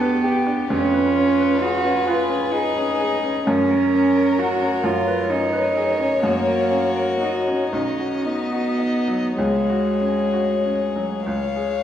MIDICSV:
0, 0, Header, 1, 5, 480
1, 0, Start_track
1, 0, Tempo, 910470
1, 371, Time_signature, 6, 3, 24, 8
1, 1328, Tempo, 927357
1, 3248, Tempo, 983607
1, 3728, Tempo, 1041667
1, 4208, Tempo, 1117318
1, 4688, Tempo, 1276596
1, 5168, Tempo, 1185771
1, 5647, End_track
2, 0, Start_track
2, 0, Title_t, "Violin"
2, 0, Program_c, 0, 40
2, 0, Note_on_c, 0, 67, 70
2, 352, Note_off_c, 0, 67, 0
2, 366, Note_on_c, 0, 71, 73
2, 1794, Note_off_c, 0, 71, 0
2, 1809, Note_on_c, 0, 70, 66
2, 2531, Note_on_c, 0, 73, 75
2, 2538, Note_off_c, 0, 70, 0
2, 3962, Note_off_c, 0, 73, 0
2, 3965, Note_on_c, 0, 75, 61
2, 4673, Note_off_c, 0, 75, 0
2, 4689, Note_on_c, 0, 73, 58
2, 5401, Note_off_c, 0, 73, 0
2, 5413, Note_on_c, 0, 77, 60
2, 5647, Note_off_c, 0, 77, 0
2, 5647, End_track
3, 0, Start_track
3, 0, Title_t, "Violin"
3, 0, Program_c, 1, 40
3, 0, Note_on_c, 1, 69, 79
3, 127, Note_off_c, 1, 69, 0
3, 130, Note_on_c, 1, 67, 66
3, 366, Note_on_c, 1, 65, 79
3, 374, Note_off_c, 1, 67, 0
3, 1085, Note_on_c, 1, 68, 88
3, 1093, Note_off_c, 1, 65, 0
3, 1819, Note_on_c, 1, 70, 82
3, 1827, Note_off_c, 1, 68, 0
3, 3247, Note_off_c, 1, 70, 0
3, 3250, Note_on_c, 1, 66, 85
3, 3954, Note_off_c, 1, 66, 0
3, 3969, Note_on_c, 1, 63, 68
3, 4691, Note_on_c, 1, 68, 62
3, 4697, Note_off_c, 1, 63, 0
3, 5413, Note_off_c, 1, 68, 0
3, 5416, Note_on_c, 1, 73, 93
3, 5647, Note_off_c, 1, 73, 0
3, 5647, End_track
4, 0, Start_track
4, 0, Title_t, "Grand piano"
4, 0, Program_c, 2, 0
4, 0, Control_c, 2, 64, 127
4, 0, Note_on_c, 2, 40, 65
4, 0, Note_on_c, 2, 62, 58
4, 0, Note_on_c, 2, 71, 54
4, 5, Note_off_c, 2, 71, 0
4, 5, Note_on_c, 2, 71, 64
4, 79, Note_off_c, 2, 62, 0
4, 125, Note_on_c, 2, 67, 58
4, 201, Note_off_c, 2, 71, 0
4, 245, Note_on_c, 2, 62, 55
4, 321, Note_off_c, 2, 67, 0
4, 348, Note_off_c, 2, 40, 0
4, 368, Note_off_c, 2, 62, 0
4, 371, Note_on_c, 2, 41, 71
4, 379, Control_c, 2, 64, 0
4, 449, Control_c, 2, 64, 127
4, 493, Note_on_c, 2, 71, 56
4, 616, Note_on_c, 2, 61, 58
4, 684, Note_off_c, 2, 71, 0
4, 737, Note_on_c, 2, 71, 56
4, 806, Note_off_c, 2, 61, 0
4, 860, Note_on_c, 2, 68, 54
4, 926, Note_off_c, 2, 71, 0
4, 974, Note_on_c, 2, 61, 58
4, 1046, Note_off_c, 2, 68, 0
4, 1093, Note_on_c, 2, 71, 55
4, 1162, Note_off_c, 2, 61, 0
4, 1210, Note_on_c, 2, 61, 54
4, 1282, Note_off_c, 2, 71, 0
4, 1332, Note_on_c, 2, 68, 61
4, 1401, Note_off_c, 2, 61, 0
4, 1454, Note_on_c, 2, 61, 59
4, 1523, Note_off_c, 2, 68, 0
4, 1574, Note_on_c, 2, 68, 59
4, 1647, Note_off_c, 2, 61, 0
4, 1699, Note_on_c, 2, 61, 58
4, 1770, Note_off_c, 2, 68, 0
4, 1796, Note_off_c, 2, 41, 0
4, 1820, Note_off_c, 2, 61, 0
4, 1821, Note_on_c, 2, 42, 74
4, 1825, Control_c, 2, 64, 0
4, 1909, Control_c, 2, 64, 127
4, 1940, Note_on_c, 2, 70, 56
4, 2063, Note_on_c, 2, 61, 58
4, 2131, Note_off_c, 2, 70, 0
4, 2181, Note_on_c, 2, 70, 55
4, 2250, Note_off_c, 2, 61, 0
4, 2294, Note_on_c, 2, 66, 57
4, 2367, Note_off_c, 2, 70, 0
4, 2412, Note_on_c, 2, 61, 57
4, 2483, Note_off_c, 2, 66, 0
4, 2512, Note_off_c, 2, 42, 0
4, 2528, Note_on_c, 2, 42, 64
4, 2531, Note_off_c, 2, 61, 0
4, 2539, Control_c, 2, 64, 0
4, 2604, Control_c, 2, 64, 127
4, 2650, Note_on_c, 2, 71, 53
4, 2765, Note_on_c, 2, 61, 61
4, 2840, Note_off_c, 2, 71, 0
4, 2885, Note_on_c, 2, 71, 57
4, 2958, Note_off_c, 2, 61, 0
4, 3009, Note_on_c, 2, 68, 57
4, 3077, Note_off_c, 2, 71, 0
4, 3125, Note_on_c, 2, 61, 57
4, 3200, Note_off_c, 2, 68, 0
4, 3225, Note_off_c, 2, 42, 0
4, 3247, Note_off_c, 2, 61, 0
4, 3251, Note_on_c, 2, 42, 67
4, 3256, Control_c, 2, 64, 0
4, 3334, Control_c, 2, 64, 127
4, 3366, Note_on_c, 2, 70, 54
4, 3480, Note_on_c, 2, 61, 57
4, 3556, Note_off_c, 2, 70, 0
4, 3604, Note_on_c, 2, 70, 56
4, 3677, Note_off_c, 2, 61, 0
4, 3727, Note_on_c, 2, 66, 49
4, 3799, Note_off_c, 2, 70, 0
4, 3849, Note_on_c, 2, 61, 55
4, 3919, Note_off_c, 2, 66, 0
4, 3950, Note_off_c, 2, 42, 0
4, 3966, Note_on_c, 2, 35, 59
4, 3968, Note_off_c, 2, 61, 0
4, 3975, Control_c, 2, 64, 0
4, 4049, Control_c, 2, 64, 127
4, 4086, Note_on_c, 2, 66, 49
4, 4207, Note_on_c, 2, 63, 47
4, 4275, Note_off_c, 2, 66, 0
4, 4319, Note_on_c, 2, 66, 49
4, 4391, Note_off_c, 2, 63, 0
4, 4436, Note_on_c, 2, 63, 51
4, 4510, Note_off_c, 2, 66, 0
4, 4562, Note_on_c, 2, 54, 50
4, 4635, Note_off_c, 2, 63, 0
4, 4670, Note_off_c, 2, 35, 0
4, 4689, Note_off_c, 2, 54, 0
4, 4691, Note_on_c, 2, 37, 62
4, 4696, Control_c, 2, 64, 0
4, 4776, Control_c, 2, 64, 127
4, 4808, Note_on_c, 2, 66, 49
4, 4929, Note_on_c, 2, 61, 47
4, 5000, Note_off_c, 2, 66, 0
4, 5048, Note_on_c, 2, 66, 48
4, 5122, Note_off_c, 2, 61, 0
4, 5169, Note_on_c, 2, 61, 48
4, 5246, Note_off_c, 2, 66, 0
4, 5295, Note_on_c, 2, 54, 48
4, 5369, Note_off_c, 2, 61, 0
4, 5402, Note_off_c, 2, 37, 0
4, 5416, Note_off_c, 2, 54, 0
4, 5417, Note_on_c, 2, 37, 54
4, 5425, Control_c, 2, 64, 0
4, 5507, Control_c, 2, 64, 127
4, 5537, Note_on_c, 2, 68, 45
4, 5647, Note_off_c, 2, 37, 0
4, 5647, Note_off_c, 2, 68, 0
4, 5647, End_track
5, 0, Start_track
5, 0, Title_t, "Cello"
5, 0, Program_c, 3, 42
5, 0, Note_on_c, 3, 59, 100
5, 369, Note_off_c, 3, 59, 0
5, 372, Note_on_c, 3, 61, 96
5, 849, Note_on_c, 3, 66, 96
5, 857, Note_off_c, 3, 61, 0
5, 1092, Note_on_c, 3, 65, 86
5, 1100, Note_off_c, 3, 66, 0
5, 1329, Note_on_c, 3, 63, 96
5, 1337, Note_off_c, 3, 65, 0
5, 1815, Note_off_c, 3, 63, 0
5, 1818, Note_on_c, 3, 61, 100
5, 2297, Note_on_c, 3, 66, 93
5, 2304, Note_off_c, 3, 61, 0
5, 2529, Note_on_c, 3, 65, 90
5, 2537, Note_off_c, 3, 66, 0
5, 2764, Note_on_c, 3, 63, 93
5, 2772, Note_off_c, 3, 65, 0
5, 3246, Note_on_c, 3, 58, 93
5, 3254, Note_off_c, 3, 63, 0
5, 3724, Note_off_c, 3, 58, 0
5, 3727, Note_on_c, 3, 63, 79
5, 3970, Note_on_c, 3, 61, 69
5, 3976, Note_off_c, 3, 63, 0
5, 4209, Note_on_c, 3, 59, 88
5, 4215, Note_off_c, 3, 61, 0
5, 4686, Note_off_c, 3, 59, 0
5, 4689, Note_on_c, 3, 56, 76
5, 5401, Note_off_c, 3, 56, 0
5, 5647, End_track
0, 0, End_of_file